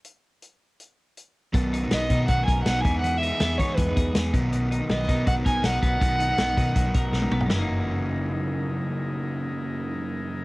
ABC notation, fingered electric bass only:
X:1
M:4/4
L:1/8
Q:1/4=161
K:F#mix
V:1 name="Fingered electric bass" clef=bass
z8 | B,,,2 B,,, B,, B,,, B,,, B,,, E,,- | E,,2 E,, E, E,, E,, E,, B,,,- | B,,,2 B,,, B,, B,,, B,,, B,,, B,,, |
B,,,2 B,,, B,, B,,, B,,, B,,, B,,, | F,,,8- | F,,,8 |]